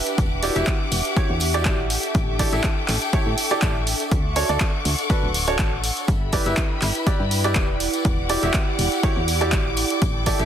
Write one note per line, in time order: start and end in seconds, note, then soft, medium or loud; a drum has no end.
0.00 6.78 D4 medium
0.00 1.87 G4 medium
0.00 0.73 B4 medium
0.00 4.91 E5 medium
0.00 1.88 F#5 medium
0.00 1.88 D6 medium
0.06 closed hi-hat medium
0.06 tambourine medium
0.18 0.51 E1 loud
0.18 kick loud
0.18 closed hi-hat medium
0.18 tambourine soft
0.31 2.79 G4 medium
0.43 0.54 E4 medium
0.43 0.54 F#4 medium
0.43 0.54 G4 medium
0.43 0.54 D5 loud
0.43 open hi-hat loud
0.43 tambourine loud
0.56 0.64 E1 medium
0.56 0.69 E4 loud
0.56 0.69 F#4 medium
0.56 0.69 G4 medium
0.56 0.69 E5 loud
0.56 closed hi-hat medium
0.56 tambourine medium
0.67 kick loud
0.67 clap loud
0.67 closed hi-hat medium
0.79 1.90 F#5 medium
0.92 1.02 E1 loud
0.92 open hi-hat loud
0.92 tambourine loud
1.05 closed hi-hat medium
1.05 tambourine medium
1.16 1.31 E4 medium
1.16 1.31 F#4 medium
1.16 1.31 G4 medium
1.16 1.31 C#5 medium
1.16 kick loud
1.16 closed hi-hat medium
1.16 tambourine soft
1.30 1.67 E2 loud
1.40 open hi-hat loud
1.40 tambourine loud
1.54 1.77 E4 medium
1.54 1.76 F#4 medium
1.54 1.76 G4 medium
1.54 1.77 D5 medium
1.54 closed hi-hat medium
1.54 tambourine medium
1.65 1.98 A1 loud
1.65 kick loud
1.65 clap loud
1.65 closed hi-hat medium
1.65 tambourine soft
1.90 4.09 A4 medium
1.90 4.09 G5 medium
1.90 4.09 D6 medium
1.90 open hi-hat loud
1.90 tambourine loud
2.03 closed hi-hat medium
2.03 tambourine medium
2.14 2.47 A1 loud
2.14 kick loud
2.14 closed hi-hat medium
2.14 tambourine soft
2.20 6.78 A4 medium
2.39 2.51 E4 medium
2.39 2.51 G4 medium
2.39 2.51 A4 medium
2.39 2.51 D5 loud
2.39 kick medium
2.39 open hi-hat loud
2.39 tambourine loud
2.53 2.61 A1 medium
2.53 2.66 E4 loud
2.53 2.66 G4 medium
2.53 2.66 A4 medium
2.53 2.66 E5 loud
2.53 closed hi-hat medium
2.53 tambourine medium
2.64 kick loud
2.64 clap loud
2.64 closed hi-hat medium
2.88 2.98 A1 loud
2.88 4.12 G5 medium
2.88 clap medium
2.88 open hi-hat loud
2.88 tambourine loud
3.01 closed hi-hat medium
3.01 tambourine medium
3.13 3.28 E4 medium
3.13 3.28 G4 medium
3.13 3.28 A4 medium
3.13 3.28 C#5 medium
3.13 kick loud
3.13 closed hi-hat medium
3.13 tambourine soft
3.26 3.35 A2 loud
3.38 open hi-hat loud
3.38 tambourine loud
3.51 3.73 E4 medium
3.51 3.73 G4 medium
3.51 3.73 A4 medium
3.51 3.73 D5 loud
3.51 closed hi-hat medium
3.51 tambourine medium
3.62 3.95 A1 medium
3.62 kick loud
3.62 clap loud
3.62 closed hi-hat medium
3.87 open hi-hat loud
3.87 tambourine medium
4.00 closed hi-hat medium
4.00 tambourine medium
4.11 4.44 D2 loud
4.11 6.06 F#5 medium
4.11 6.06 C#6 medium
4.11 6.06 D6 medium
4.11 kick loud
4.11 closed hi-hat medium
4.36 4.47 D4 loud
4.36 4.47 F#4 medium
4.36 4.47 A4 medium
4.36 4.47 C#5 loud
4.36 open hi-hat loud
4.36 tambourine medium
4.49 4.58 D2 medium
4.49 4.63 D4 loud
4.49 4.63 F#4 medium
4.49 4.63 A4 medium
4.49 4.63 D5 loud
4.49 closed hi-hat medium
4.49 tambourine medium
4.60 kick loud
4.60 clap loud
4.60 closed hi-hat medium
4.60 tambourine soft
4.85 4.95 D2 loud
4.85 open hi-hat medium
4.85 tambourine medium
4.98 6.08 F#5 medium
4.98 closed hi-hat medium
4.98 tambourine medium
5.10 5.25 D4 medium
5.10 5.25 F#4 medium
5.10 5.25 A4 medium
5.10 5.25 B4 loud
5.10 kick loud
5.10 closed hi-hat medium
5.23 5.61 D1 loud
5.34 open hi-hat loud
5.34 tambourine loud
5.47 5.70 D4 medium
5.47 5.70 F#4 medium
5.47 5.70 A4 medium
5.47 5.70 C#5 medium
5.47 closed hi-hat medium
5.47 tambourine medium
5.58 5.91 A1 loud
5.58 kick loud
5.58 clap loud
5.58 closed hi-hat medium
5.58 tambourine soft
5.84 open hi-hat loud
5.84 tambourine loud
5.97 closed hi-hat medium
5.97 tambourine medium
6.07 6.41 G1 loud
6.07 10.45 E4 medium
6.07 7.79 G4 medium
6.07 7.79 E5 medium
6.07 7.79 B5 medium
6.07 kick loud
6.07 closed hi-hat medium
6.07 tambourine soft
6.32 6.44 E4 medium
6.32 6.44 G4 medium
6.32 6.44 B4 medium
6.32 6.44 D5 loud
6.32 kick medium
6.32 open hi-hat loud
6.32 tambourine medium
6.38 8.60 B4 medium
6.46 6.55 G1 medium
6.46 6.59 E4 medium
6.46 6.59 G4 medium
6.46 6.59 B4 medium
6.46 6.59 E5 loud
6.46 closed hi-hat medium
6.46 tambourine medium
6.50 10.45 D5 medium
6.57 kick loud
6.57 clap loud
6.57 closed hi-hat medium
6.82 6.92 G1 loud
6.82 clap medium
6.82 open hi-hat medium
6.82 tambourine medium
6.86 7.80 G5 medium
6.95 closed hi-hat medium
6.95 tambourine medium
7.07 7.21 E4 medium
7.07 7.21 G4 medium
7.07 7.21 B4 medium
7.07 7.21 D5 medium
7.07 kick loud
7.07 closed hi-hat medium
7.20 7.57 G2 loud
7.31 open hi-hat loud
7.31 tambourine medium
7.44 7.67 E4 medium
7.44 7.67 G4 medium
7.44 7.67 B4 medium
7.44 7.67 D5 loud
7.44 closed hi-hat medium
7.44 tambourine medium
7.55 7.88 E1 loud
7.55 kick loud
7.55 clap loud
7.55 closed hi-hat medium
7.55 tambourine soft
7.80 9.75 G4 medium
7.80 9.75 F#5 medium
7.80 10.45 D6 medium
7.80 open hi-hat medium
7.80 tambourine loud
7.88 10.45 G4 medium
7.94 closed hi-hat medium
7.94 tambourine medium
8.05 8.37 E1 loud
8.05 9.77 F#5 medium
8.05 kick loud
8.05 closed hi-hat medium
8.05 tambourine soft
8.29 8.41 E4 loud
8.29 8.41 F#4 medium
8.29 8.41 G4 medium
8.29 8.41 D5 loud
8.29 open hi-hat loud
8.29 tambourine medium
8.43 8.51 E1 medium
8.43 8.56 E4 loud
8.43 8.56 F#4 medium
8.43 8.56 G4 medium
8.43 8.56 E5 loud
8.43 closed hi-hat medium
8.43 tambourine medium
8.54 kick loud
8.54 clap loud
8.54 closed hi-hat medium
8.79 8.89 E1 loud
8.79 open hi-hat medium
8.79 tambourine medium
8.92 closed hi-hat medium
8.92 tambourine medium
9.03 9.18 E4 medium
9.03 9.18 F#4 medium
9.03 9.18 G4 medium
9.03 9.18 C#5 medium
9.03 kick loud
9.03 closed hi-hat medium
9.17 9.54 E2 loud
9.28 open hi-hat loud
9.28 tambourine medium
9.41 9.63 E4 medium
9.41 9.63 F#4 medium
9.41 9.63 G4 medium
9.41 9.63 D5 loud
9.41 closed hi-hat medium
9.41 tambourine medium
9.52 9.85 A1 loud
9.52 kick loud
9.52 clap loud
9.52 closed hi-hat medium
9.52 tambourine soft
9.77 10.45 A4 medium
9.77 10.45 G5 medium
9.77 open hi-hat medium
9.77 tambourine medium
9.87 10.45 A4 medium
9.87 closed hi-hat medium
9.91 tambourine soft
10.02 10.34 A1 loud
10.02 kick loud
10.02 closed hi-hat medium
10.02 tambourine soft
10.26 10.38 E4 medium
10.26 10.38 G4 medium
10.26 10.38 A4 medium
10.26 10.38 D5 loud
10.26 kick medium
10.26 open hi-hat loud
10.26 tambourine loud
10.39 10.45 A1 loud
10.39 10.45 E4 loud
10.39 10.45 G4 medium
10.39 10.45 A4 medium
10.39 10.45 E5 loud
10.39 closed hi-hat medium
10.39 tambourine soft